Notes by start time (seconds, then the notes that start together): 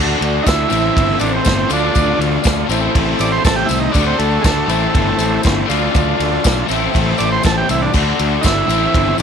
Already playing: D2 D3 A3 D4 F#4 A4
0.21 D2, ride
0.43 D2 D#4 E4, kick, tambourine
0.47 snare, ride
0.68 A1 A2 E3 A3 C4 E4 A4, ride, tambourine
0.73 E4
0.97 G1, kick, ride
1.19 A1 D4, ride, tambourine
1.36 C4
1.45 G1, kick, snare, ride, tambourine
1.68 D2 D3 A3 D4 F4 A4, ride, tambourine
1.72 D4 F4
1.95 D2, kick, ride, tambourine
2.18 D2, ride
2.44 D2, kick, snare, ride, tambourine
2.67 A1 A2 E3 A3 C4 E4, tambourine
2.71 E4 A4, ride
2.95 A1, kick, ride
3.19 A1 D5, ride, tambourine
3.32 C5
3.45 A1 A4, kick, snare, ride, tambourine
3.56 G4
3.66 C2 E4, tambourine
3.71 ride
3.80 D#4
3.92 D2 D3 A3 D4, kick, ride, tambourine
3.96 D4 F#4 A4
4.06 C4
4.19 D2 A3, ride
4.41 D2 G#3 A3, kick, ride, tambourine
4.45 snare
4.66 A1 A2 E3 A3 C4, ride, tambourine
4.70 C4 E4 A4
4.95 G1, kick, ride
5.19 A1, ride, tambourine
5.43 G1, kick, snare, ride, tambourine
5.66 D2 D3 A3 D4 F4, tambourine
5.70 F4 A4, ride
5.94 D2, kick, ride, tambourine
6.20 D2, ride
6.44 B1, kick, snare, ride, tambourine
6.66 A1 A2 E3 A3 C4 E4 A4, tambourine
6.71 E4, ride
6.94 A1, kick, ride, tambourine
7.18 A1 D5, ride, tambourine
7.32 C5
7.43 A1 A4, kick, snare, ride, tambourine
7.58 G4
7.69 C2 E4, ride, tambourine
7.82 D4
7.92 D2 D3 A3 D4 F#4 A4, kick, crash, tambourine
7.96 D4 F#4
8.19 D2, ride
8.41 G1 D#4 E4, kick, ride, tambourine
8.46 snare
8.67 A1 A2 E3 A3 C4 E4 A4, ride, tambourine
8.71 C4 E4
8.94 G1, kick, ride
9.18 A1, tambourine